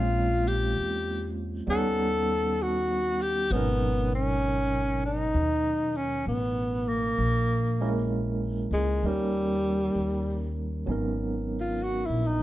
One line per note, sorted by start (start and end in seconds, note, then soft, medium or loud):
0.00 0.73 A#1 medium
0.00 1.68 G#3 soft
0.00 1.68 A#3 soft
0.00 1.68 C4 soft
0.00 1.68 C#4 soft
0.00 0.49 F4 medium
0.00 1.69 F4 soft
0.47 1.38 G4 medium
0.76 1.64 E2 medium
1.67 3.47 D#2 medium
1.67 3.51 G3 soft
1.67 3.52 B3 soft
1.67 3.52 C#4 soft
1.67 2.63 A4 medium
1.71 3.53 D#4 soft
1.71 3.53 F#5 soft
2.62 3.23 F#4 medium
3.22 3.54 G4 medium
3.51 5.30 G#1 medium
3.51 7.19 B2 soft
3.51 7.19 F#3 soft
3.51 4.12 B3 medium
3.51 7.20 C#4 soft
3.55 7.20 D#4 soft
3.55 7.21 A#4 medium
4.15 5.01 C#4 medium
5.05 5.98 D#4 medium
5.34 6.22 D#2 medium
5.97 6.27 C#4 medium
6.26 7.14 A1 medium
6.26 6.89 B3 medium
6.88 8.11 A#3 medium
7.18 8.67 A#1 medium
7.80 9.03 G#3 soft
7.80 9.04 A#3 soft
7.80 9.04 C#4 soft
7.80 9.04 E4 soft
7.80 9.04 A#4 medium
8.71 9.00 C#2 medium
8.71 9.07 G#3 medium
9.03 9.91 D#2 medium
9.03 10.88 G3 soft
9.03 10.57 G3 medium
9.03 10.88 A#3 soft
9.03 10.88 C#4 soft
9.03 10.89 D#4 soft
9.03 10.89 A#4 soft
9.95 10.83 D#2 medium
10.86 12.05 G#1 medium
10.86 12.43 F#3 soft
10.86 12.43 B3 soft
10.86 12.43 C#4 soft
10.86 12.43 D#4 soft
10.92 12.43 A#4 soft
11.60 11.84 F4 medium
11.83 12.07 F#4 medium
12.06 12.38 A#1 soft
12.06 12.28 E4 medium
12.27 12.43 D#4 medium